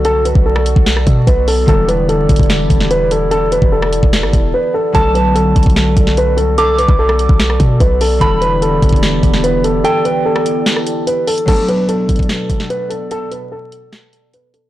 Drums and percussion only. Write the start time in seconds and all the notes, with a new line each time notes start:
0.05 closed hi-hat
0.25 closed hi-hat
0.35 kick
0.56 cross-stick
0.66 closed hi-hat
0.76 kick
0.86 snare, closed hi-hat
0.97 cross-stick
1.07 kick, closed hi-hat
1.27 kick, closed hi-hat
1.48 open hi-hat
1.68 kick, closed hi-hat
1.89 closed hi-hat
2.09 closed hi-hat
2.29 kick, closed hi-hat
2.36 kick, closed hi-hat
2.43 closed hi-hat
2.50 snare, closed hi-hat
2.70 kick, closed hi-hat
2.80 snare
2.91 closed hi-hat
3.11 closed hi-hat
3.31 closed hi-hat
3.52 closed hi-hat
3.62 kick
3.82 cross-stick
3.93 closed hi-hat
4.03 kick
4.13 snare, closed hi-hat
4.23 cross-stick
4.33 kick, closed hi-hat
4.95 kick, closed hi-hat
5.15 closed hi-hat
5.36 closed hi-hat
5.56 kick, closed hi-hat
5.63 kick, closed hi-hat
5.70 closed hi-hat
5.76 snare, closed hi-hat
5.97 kick, closed hi-hat
6.07 snare
6.17 closed hi-hat
6.38 closed hi-hat
6.58 closed hi-hat
6.79 closed hi-hat
6.89 kick
7.09 cross-stick
7.19 closed hi-hat
7.29 kick
7.40 snare, closed hi-hat
7.50 cross-stick
7.60 kick, closed hi-hat
7.80 kick, closed hi-hat
8.01 open hi-hat
8.21 kick, closed hi-hat
8.42 closed hi-hat
8.62 closed hi-hat
8.82 kick, closed hi-hat
8.89 kick, closed hi-hat
8.96 closed hi-hat
9.03 snare, closed hi-hat
9.23 kick, closed hi-hat
9.34 snare
9.44 closed hi-hat
9.64 closed hi-hat
9.85 closed hi-hat
10.05 closed hi-hat
10.36 cross-stick
10.46 closed hi-hat
10.66 snare, closed hi-hat
10.76 cross-stick
10.87 closed hi-hat
11.07 closed hi-hat
11.27 closed hi-hat, open hi-hat
11.38 closed hi-hat
11.48 kick, closed hi-hat, crash
11.68 closed hi-hat
11.89 closed hi-hat
12.09 kick, closed hi-hat
12.16 kick, closed hi-hat
12.23 closed hi-hat
12.29 snare, closed hi-hat
12.50 kick, closed hi-hat
12.60 snare
12.70 closed hi-hat
12.91 closed hi-hat
13.11 closed hi-hat
13.32 closed hi-hat
13.72 closed hi-hat
13.93 snare, closed hi-hat
14.13 closed hi-hat
14.34 closed hi-hat
14.54 closed hi-hat